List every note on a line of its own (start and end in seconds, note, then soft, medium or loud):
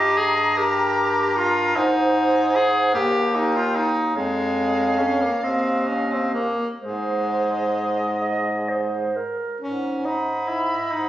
0.00 1.72 G2 medium
0.00 0.19 G4 loud
0.00 0.52 D#5 medium
0.00 1.78 A#5 medium
0.17 0.59 G#4 loud
0.57 1.38 G4 medium
0.57 1.74 A#4 medium
1.37 1.78 F4 loud
1.76 2.96 G#2 medium
1.76 2.57 D#4 loud
1.76 2.95 C5 medium
1.76 2.94 G#5 medium
2.56 2.94 G#4 loud
2.93 4.15 D#2 medium
2.93 3.37 G4 loud
2.93 3.99 A#4 medium
2.93 3.98 G5 medium
3.35 3.58 D#4 loud
3.56 3.77 F4 medium
3.76 4.15 D#4 medium
4.15 5.26 F2 medium
4.15 5.01 G#3 medium
4.15 5.45 C#5 medium
4.15 6.46 F5 medium
4.99 5.23 C#4 medium
5.22 5.43 A#3 medium
5.43 6.48 D#2 medium
5.43 5.89 C4 medium
5.43 6.50 D#5 medium
5.88 6.14 C#4 medium
6.12 6.34 C4 medium
6.34 6.67 A#3 medium
6.80 9.23 G#2 medium
6.80 9.11 G#3 medium
6.80 8.08 C5 medium
6.80 9.23 D#5 medium
8.21 8.70 D#5 medium
8.69 9.18 C5 medium
9.16 9.61 A#4 medium
9.61 10.75 G#2 soft
9.61 10.07 C#4 medium
10.04 10.50 D#4 medium
10.04 11.09 D#5 soft
10.04 11.09 B5 medium
10.48 10.93 E4 medium
10.90 11.09 G#2 soft
10.90 11.09 D#4 medium